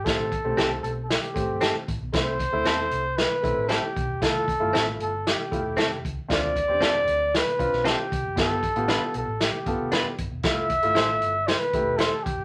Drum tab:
HH |x-x-x-x-xxx-x-x-|x-x-x-x-x-x-x-x-|x-x-x-x-x-x-x-x-|x-x-x-x-xxx-x-x-|
SD |o---o---o---o---|o---o---o---o---|o---o---o---o---|o---o---o--oo---|
BD |o-o-------o---o-|o-o-------o---o-|o-o-------o---o-|o-o-------o---o-|

HH |x-xxx-x-x-x-x-x-|x-xxx-x-xxx-x-x-|
SD |o---o---o---o---|o---o---o---o---|
BD |o-o-------o---o-|o-o-------o---o-|